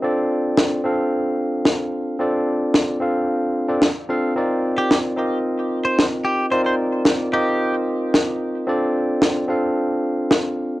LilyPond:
<<
  \new Staff \with { instrumentName = "Clean electric guitar" } { \time 4/4 \key d \phrygian \tempo 4 = 111 r1 | r1 | r8. g'8 r4. c''8 r16 g'8 | c''16 c''16 r4 g'8. r4. r16 |
r1 | }
  \new Staff \with { instrumentName = "Tine electric piano" } { \time 4/4 \key d \phrygian <c' d' f' a' d''>4. <c' d' f' a' f''>2~ <c' d' f' a' f''>8 | <c' d' f' a' d''>4. <c' d' f' a' f''>4~ <c' d' f' a' f''>16 <c' d' f' a' d''>16 r8 <c' d' f' a' f''>8 | <c' ees' f' bes' d''>4. <c' ees' f' bes' ees''>2~ <c' ees' f' bes' ees''>8 | <c' ees' f' bes' d''>4. <c' ees' f' bes' ees''>2~ <c' ees' f' bes' ees''>8 |
<c' d' f' a' d''>4. <c' d' f' a' f''>2~ <c' d' f' a' f''>8 | }
  \new DrumStaff \with { instrumentName = "Drums" } \drummode { \time 4/4 r4 sn4 r4 sn4 | r4 sn4 r4 sn4 | r4 sn4 r4 sn4 | r4 sn4 r4 sn4 |
r4 sn4 r4 sn4 | }
>>